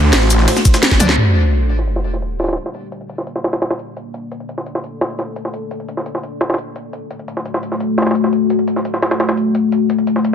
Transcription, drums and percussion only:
0.13 snare loud
0.13 closed hi-hat medium
0.13 ride medium
0.13 shaker soft
0.22 closed hi-hat soft
0.30 closed hi-hat medium
0.30 closed hi-hat loud
0.30 shaker medium
0.39 snare soft
0.48 snare loud
0.48 closed hi-hat medium
0.48 ride medium
0.57 snare soft
0.57 shaker soft
0.65 kick loud
0.65 snare soft
0.65 closed hi-hat loud
0.65 closed hi-hat medium
0.65 shaker medium
0.74 snare loud
0.74 closed hi-hat medium
0.74 shaker soft
0.83 snare loud
0.83 closed hi-hat medium
0.83 ride medium
0.91 kick medium
0.91 snare soft
0.91 snare medium
0.91 closed hi-hat medium
1.00 closed hi-hat medium
1.00 closed hi-hat loud
1.00 mid tom medium
1.00 shaker medium
1.09 snare medium
1.18 closed hi-hat medium
1.35 closed hi-hat medium
1.52 closed hi-hat medium
1.61 closed hi-hat soft
1.70 closed hi-hat medium
1.79 snare soft
1.87 closed hi-hat medium
1.96 snare medium
2.05 closed hi-hat medium
2.13 snare soft
2.22 closed hi-hat medium
2.40 snare medium
2.40 closed hi-hat medium
2.40 closed hi-hat loud
2.44 snare medium
2.44 closed hi-hat medium
2.48 snare medium
2.48 closed hi-hat medium
2.53 snare medium
2.53 closed hi-hat medium
2.57 closed hi-hat medium
2.66 snare soft
2.74 closed hi-hat medium
2.92 closed hi-hat medium
3.01 closed hi-hat soft
3.09 closed hi-hat medium
3.18 snare soft
3.27 closed hi-hat medium
3.36 snare soft
3.44 snare loud
3.44 closed hi-hat medium
3.53 snare loud
3.53 closed hi-hat medium
3.62 snare loud
3.62 closed hi-hat medium
3.70 snare loud
3.70 closed hi-hat medium
3.79 closed hi-hat medium
3.97 closed hi-hat medium
4.14 closed hi-hat medium
4.31 closed hi-hat medium
4.40 closed hi-hat soft
4.49 closed hi-hat medium
4.58 snare soft
4.66 closed hi-hat medium
4.75 snare medium
4.84 closed hi-hat medium
5.01 snare loud
5.01 closed hi-hat medium
5.10 closed hi-hat soft
5.19 snare soft
5.19 closed hi-hat medium
5.36 closed hi-hat medium
5.45 snare soft
5.54 closed hi-hat medium
5.71 closed hi-hat medium
5.80 closed hi-hat soft
5.88 closed hi-hat medium
5.97 snare soft
6.06 closed hi-hat medium
6.15 snare soft
6.23 closed hi-hat medium
6.41 snare loud
6.41 closed hi-hat medium
6.50 snare medium
6.50 closed hi-hat medium
6.54 snare medium
6.54 closed hi-hat medium
6.58 closed hi-hat medium
6.76 closed hi-hat medium
6.93 closed hi-hat medium
7.11 closed hi-hat medium
7.19 closed hi-hat soft
7.28 closed hi-hat medium
7.37 snare soft
7.45 closed hi-hat medium
7.54 snare medium
7.63 closed hi-hat medium
7.72 snare soft
7.80 closed hi-hat medium
7.98 snare medium
7.98 closed hi-hat medium
8.02 snare medium
8.02 closed hi-hat medium
8.07 snare medium
8.07 closed hi-hat medium
8.11 snare medium
8.11 closed hi-hat medium
8.15 closed hi-hat medium
8.24 snare soft
8.33 closed hi-hat medium
8.50 closed hi-hat medium
8.59 closed hi-hat soft
8.68 closed hi-hat medium
8.76 snare soft
8.85 closed hi-hat medium
8.94 snare soft
9.02 snare loud
9.02 closed hi-hat medium
9.11 snare loud
9.11 closed hi-hat medium
9.20 snare loud
9.20 closed hi-hat medium
9.29 snare loud
9.29 closed hi-hat medium
9.37 closed hi-hat medium
9.55 closed hi-hat medium
9.72 closed hi-hat medium
9.90 closed hi-hat medium
9.98 closed hi-hat soft
10.07 closed hi-hat medium
10.16 snare soft
10.25 closed hi-hat medium

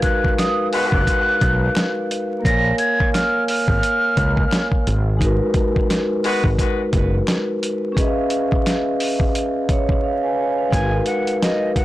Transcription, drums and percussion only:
0.02 kick loud
0.02 closed hi-hat medium
0.24 kick loud
0.39 finger snap medium
0.39 snare loud
0.39 closed hi-hat loud
0.73 open hi-hat medium
0.92 kick loud
1.07 kick medium
1.07 closed hi-hat loud
1.41 kick medium
1.41 closed hi-hat medium
1.75 finger snap medium
1.75 snare loud
1.75 closed hi-hat medium
2.11 closed hi-hat medium
2.45 kick loud
2.45 closed hi-hat loud
2.78 closed hi-hat medium
3.00 kick loud
3.14 finger snap medium
3.14 snare loud
3.14 closed hi-hat loud
3.48 open hi-hat medium
3.68 kick loud
3.83 closed hi-hat medium
4.17 kick medium
4.17 closed hi-hat medium
4.37 kick loud
4.51 finger snap medium
4.51 snare loud
4.51 closed hi-hat loud
4.72 kick medium
4.87 closed hi-hat medium
5.21 kick loud
5.21 closed hi-hat loud
5.54 kick loud
5.54 closed hi-hat medium
5.76 kick loud
5.90 finger snap medium
5.90 snare loud
5.90 closed hi-hat loud
6.24 open hi-hat medium
6.44 kick loud
6.58 kick medium
6.58 closed hi-hat loud
6.93 kick medium
6.93 closed hi-hat medium
7.27 finger snap medium
7.27 snare loud
7.27 closed hi-hat loud
7.63 closed hi-hat medium
7.97 kick loud
7.97 closed hi-hat loud
8.30 closed hi-hat medium
8.52 kick loud
8.66 finger snap medium
8.66 snare loud
8.66 closed hi-hat loud
9.00 open hi-hat medium
9.20 kick loud
9.35 closed hi-hat medium
9.69 kick medium
9.69 closed hi-hat medium
9.89 kick loud
10.73 kick loud
10.73 closed hi-hat loud
11.06 closed hi-hat medium
11.27 closed hi-hat medium
11.42 snare loud
11.42 closed hi-hat loud
11.76 kick medium
11.76 closed hi-hat medium

